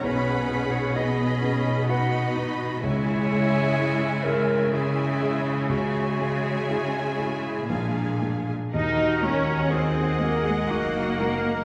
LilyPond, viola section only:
\new Staff \with { instrumentName = "Viola section" } { \time 3/4 \key cis \dorian \tempo 4 = 62 << { gis'2 fis'4 | e'2 e'4 | gis'2 gis'4 | \key ees \dorian r2. | } \\ { cis'4 b8 cis'8 dis'4 | gis2 gis4 | gis2 gis4 | ges'4 aes'4 ges'8 bes'8 | } >> }